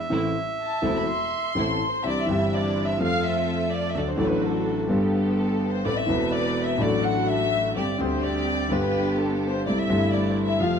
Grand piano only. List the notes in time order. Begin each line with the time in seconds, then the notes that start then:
0.10 A1 A2 E3 A3 C4 A4
0.82 E1 E2 E3 A3 C4 A4
1.55 A1 A2 E3 A3 C4 A4
2.04 C2 C3 E3 C4 D4 G4
2.26 G1 G2 E3 C4 D4 G4
2.97 F2 F3 A3 C4
3.01 A4
3.94 D2 D3 F#3 A3 D4 A4
4.16 A1 A2 F#3 A3 D4 A4
4.87 G1 G2 G3 B3 D4 A4
5.85 A1 A2 E3 B3 C4 A4
6.06 E1 E2 E3 B3 C4
6.11 A4
6.77 A1 A2 F#3 A3 D4
6.81 A4
7.76 G1 G2 D3 G3 C4 G4
7.98 D2 D3 G3 C4 G4
8.69 G1 G2 D3 G3 B3
8.73 G4
9.66 C2 C3 G3 A3 E4
9.87 G1 G2 C3 G3 A3 E4
10.59 F2 C3 F3 A3 F4